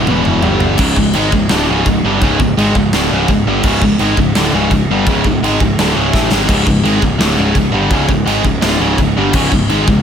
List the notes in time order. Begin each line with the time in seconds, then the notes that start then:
0.07 E1 E2 B2 E3, mid tom
0.25 mid tom
0.42 G1 G2 D3 G3, floor tom
0.60 floor tom
0.78 C#1 C#2 G#2 C#3, kick, crash, china
0.96 C#1 C#2 G#2, kick
1.13 G#1 G#2 D#3 G#3, china
1.32 C#1 C#2 G#2, kick
1.49 D1 D2 A2 D3, snare, china
1.68 C#1 C#2 G#2 C#3
1.86 C#1 C#2 G#2, kick, china
2.03 G1 G2 D3 G3
2.22 C#1 C#2 G#2 C#3, kick, china
2.39 C#1 C#2 G#2, kick
2.56 G#1 G#2 D#3 G#3, china
2.75 C#1 C#2 G#2, kick
2.93 D1 D2 A2 D3, snare, china
3.11 C#1 C#2 G#2 C#3
3.28 C#1 C#2 G#2, kick, china
3.47 G1 G2 D3 G3
3.63 C#1 C#2 G#2 C#3, kick, china, crash
3.82 C#1 C#2 G#2, kick
3.99 G#1 G#2 D#3 G#3, china
4.17 C#1 C#2 G#2, kick
4.35 D1 D2 A2 D3, snare, china
4.52 C#1 C#2 G#2 C#3
4.71 C#1 C#2 G#2, kick, china
4.89 G1 G2 D3 G3
5.07 C#1 C#2 G#2 C#3, kick, china
5.24 C#1 C#2 G#2, kick
5.42 G#1 G#2 D#3 G#3, china
5.60 C#1 C#2 G#2, kick
5.77 D1 D2 A2 D3, snare, china
5.95 C#1 C#2 G#2 C#3
6.13 A1 A2 E3 A3, kick, snare
6.30 G#1 G#2 D#3 G#3, snare
6.49 C#1 C#2 G#2 C#3, kick, crash, china
6.66 C#1 C#2 G#2, kick
6.83 G#1 G#2 D#3 G#3, china
7.01 C#1 C#2 G#2, kick
7.19 D1 D2 A2 D3, snare, china
7.36 C#1 C#2 G#2 C#3
7.54 C#1 C#2 G#2, kick, china
7.72 G1 G2 D3 G3
7.91 C#1 C#2 G#2 C#3, kick, china
8.09 C#1 C#2 G#2, kick
8.26 G#1 G#2 D#3 G#3, china
8.44 C#1 C#2 G#2, kick
8.62 D1 D2 A2 D3, snare, china
8.80 C#1 C#2 G#2 C#3
8.98 C#1 C#2 G#2, kick, china
9.16 G1 G2 D3 G3
9.33 C#1 C#2 G#2 C#3, kick, crash, china
9.52 C#1 C#2 G#2, kick
9.69 G#1 G#2 D#3 G#3, china
9.87 C#1 C#2 G#2, kick